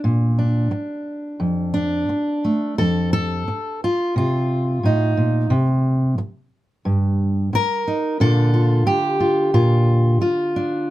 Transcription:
0.04 0.70 A#2 medium
0.39 1.73 D4 soft
0.71 muted steel-string acoustic guitar stroke medium
1.40 2.08 F2 medium
1.74 2.78 D4 medium
2.09 muted steel-string acoustic guitar stroke medium
2.45 2.75 A3 soft
2.78 3.47 F2 medium
2.78 3.12 A4 medium
3.13 3.82 A4 medium
3.48 muted steel-string acoustic guitar stroke medium
3.84 4.16 F4 medium
4.16 4.83 C3 medium
4.16 5.51 F4 medium
4.83 5.17 A2 medium
4.83 5.51 D#4 medium
5.17 5.50 A#2 medium
5.50 6.17 C3 medium
6.18 muted steel-string acoustic guitar stroke medium
6.85 7.52 G2 medium
7.53 8.21 A#4 loud
7.53 muted steel-string acoustic guitar stroke medium
7.88 8.16 D#4 soft
8.20 8.85 A#2 medium
8.20 10.90 D3 medium
8.20 10.56 D4 medium
8.20 8.52 F4 medium
8.20 8.86 A4 medium
8.54 9.19 F4 soft
8.86 10.21 G4 medium
8.86 muted steel-string acoustic guitar stroke medium
9.20 9.53 F4 soft
9.54 10.20 A#2 medium
9.54 10.20 F4 medium
10.21 10.89 F4 medium
10.21 muted steel-string acoustic guitar stroke medium
10.56 10.90 D4 soft

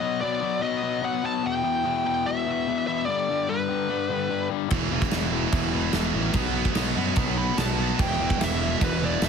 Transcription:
0.00 0.21 B2 loud
0.00 0.22 F#3 loud
0.00 0.23 B3 loud
0.00 0.19 D#5 loud
0.21 0.40 B2 loud
0.21 0.41 F#3 loud
0.21 0.42 B3 loud
0.21 0.62 D5 medium
0.42 0.60 B2 loud
0.42 0.61 F#3 loud
0.42 0.63 B3 loud
0.62 0.81 B2 loud
0.62 0.82 F#3 loud
0.62 0.83 B3 loud
0.62 1.05 D#5 loud
0.82 1.01 B2 medium
0.82 1.02 F#3 medium
0.82 1.03 B3 loud
1.02 1.22 B2 loud
1.02 1.22 F#3 loud
1.02 1.24 B3 loud
1.02 1.25 F#5 loud
1.23 1.43 B2 medium
1.23 1.43 F#3 medium
1.23 4.74 B3 loud
1.23 1.46 A5 loud
1.43 1.63 E2 loud
1.43 1.63 B2 loud
1.43 1.63 E3 loud
1.43 2.06 G5 loud
1.64 1.83 E2 medium
1.64 1.84 B2 loud
1.64 1.84 E3 loud
1.84 2.04 E2 loud
1.84 2.04 B2 loud
1.84 2.05 E3 loud
2.05 2.24 E2 loud
2.05 2.25 B2 loud
2.05 2.26 E3 loud
2.05 2.25 G5 medium
2.25 2.45 E2 medium
2.25 2.46 B2 loud
2.25 2.47 E3 loud
2.25 2.86 E5 loud
2.46 2.66 E2 medium
2.46 2.66 B2 loud
2.46 2.67 E3 loud
2.67 2.87 E2 loud
2.67 2.87 B2 loud
2.67 2.88 E3 loud
2.87 3.07 E2 loud
2.87 3.07 B2 medium
2.87 3.07 E3 loud
2.87 3.05 E5 medium
3.06 3.28 G2 medium
3.06 3.29 D3 loud
3.06 3.30 G3 loud
3.06 3.49 D5 loud
3.29 3.47 G2 loud
3.29 3.48 D3 loud
3.29 3.50 G3 loud
3.49 3.68 G2 loud
3.49 3.68 D3 loud
3.49 3.70 G3 loud
3.49 4.47 B4 medium
3.69 3.87 G2 loud
3.69 3.89 D3 loud
3.69 3.89 G3 loud
3.88 4.08 G2 medium
3.88 4.08 D3 loud
3.88 4.09 G3 loud
4.09 4.28 G2 loud
4.09 4.28 D3 loud
4.09 4.29 G3 loud
4.29 4.49 G2 loud
4.29 4.50 D3 loud
4.29 4.50 G3 loud
4.50 4.69 G2 medium
4.50 4.70 D3 medium
4.50 4.70 G3 loud
4.69 4.88 E1 medium
4.69 4.89 E2 medium
4.69 4.90 B2 loud
4.69 4.90 E3 loud
4.69 kick loud
4.69 crash medium
4.90 5.09 E1 medium
4.90 5.09 E2 loud
4.90 5.10 B2 loud
4.90 5.10 E3 loud
5.02 kick loud
5.02 snare soft
5.11 5.46 E1 loud
5.11 5.30 E2 loud
5.11 5.30 B2 loud
5.11 5.31 E3 loud
5.11 snare loud
5.11 crash medium
5.31 5.51 E2 loud
5.31 5.51 B2 loud
5.31 5.52 E3 loud
5.52 5.87 E1 loud
5.52 5.71 E2 loud
5.52 5.72 B2 loud
5.52 5.72 E3 loud
5.52 kick loud
5.52 crash medium
5.72 5.92 E2 medium
5.72 5.93 B2 loud
5.72 5.93 E3 loud
5.93 6.11 E1 loud
5.93 6.12 E2 loud
5.93 6.13 B2 loud
5.93 6.13 E3 loud
5.93 snare loud
5.93 crash medium
6.13 6.31 A1 medium
6.13 6.33 E2 loud
6.13 6.33 B2 medium
6.13 6.34 E3 loud
6.34 6.68 B1 loud
6.34 6.53 B2 loud
6.34 6.54 F#3 loud
6.34 6.55 B3 loud
6.34 kick loud
6.34 crash medium
6.54 6.73 B2 medium
6.54 6.74 F#3 medium
6.54 6.76 B3 loud
6.65 kick medium
6.75 6.93 B1 loud
6.75 6.95 B2 loud
6.75 6.96 F#3 loud
6.75 6.97 B3 loud
6.75 snare loud
6.75 crash medium
6.95 7.13 F#2 medium
6.95 7.15 B2 loud
6.95 7.16 F#3 loud
6.95 7.17 B3 loud
7.16 7.50 B1 loud
7.16 7.35 B2 loud
7.16 7.36 F#3 loud
7.16 7.38 B3 loud
7.16 kick loud
7.16 crash medium
7.37 7.55 B2 loud
7.37 7.56 F#3 medium
7.37 7.58 B3 loud
7.37 7.57 B5 loud
7.56 7.92 B1 medium
7.56 7.77 B2 loud
7.56 7.78 F#3 loud
7.56 7.79 B3 loud
7.56 8.00 A5 loud
7.56 snare loud
7.56 crash medium
7.78 7.98 B2 medium
7.78 7.98 F#3 loud
7.78 9.29 B3 medium
7.99 8.16 E1 loud
7.99 8.17 E2 loud
7.99 8.18 B2 loud
7.99 8.19 E3 loud
7.99 8.42 G5 loud
7.99 kick loud
7.99 crash medium
8.19 8.36 E1 loud
8.19 8.38 E2 loud
8.19 8.38 B2 loud
8.19 8.39 E3 loud
8.30 kick loud
8.39 8.74 E1 loud
8.39 8.58 E2 loud
8.39 8.59 B2 loud
8.39 8.60 E3 loud
8.39 snare loud
8.39 crash medium
8.44 8.84 E5 loud
8.60 8.79 E2 loud
8.60 8.80 B2 loud
8.60 8.80 E3 loud
8.80 9.15 E1 loud
8.80 9.00 E2 medium
8.80 9.01 B2 loud
8.80 9.02 E3 loud
8.80 9.03 B4 medium
8.80 kick loud
8.80 crash medium
9.01 9.20 E2 medium
9.01 9.21 B2 loud
9.01 9.22 E3 loud
9.01 9.24 D5 loud
9.21 9.29 E1 loud
9.21 9.29 E2 loud
9.21 9.29 B2 loud
9.21 9.29 E3 loud
9.21 snare loud
9.21 crash medium
9.25 9.29 E5 medium

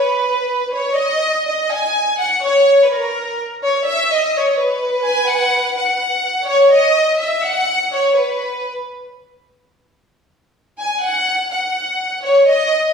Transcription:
0.00 0.67 B4 medium
0.73 0.96 C#5 medium
0.95 1.45 D#5 medium
1.47 1.68 D#5 medium
1.70 2.19 G#5 medium
2.18 2.40 F#5 medium
2.43 2.81 C#5 medium
2.83 2.89 B4 medium
2.92 3.39 A#4 medium
3.63 3.83 C#5 medium
3.87 4.09 E5 loud
4.12 4.34 D#5 medium
4.36 4.57 C#5 medium
4.60 5.79 B4 medium
5.04 5.26 G#5 medium
5.26 5.74 F#5 loud
5.75 6.45 F#5 medium
6.46 6.69 C#5 medium
6.69 7.17 D#5 medium
7.18 7.41 E5 medium
7.42 7.92 F#5 loud
7.92 8.14 C#5 medium
8.15 8.70 B4 medium
10.78 11.00 G#5 medium
11.02 11.47 F#5 medium
11.50 12.19 F#5 medium
12.23 12.46 C#5 medium
12.46 12.91 D#5 medium

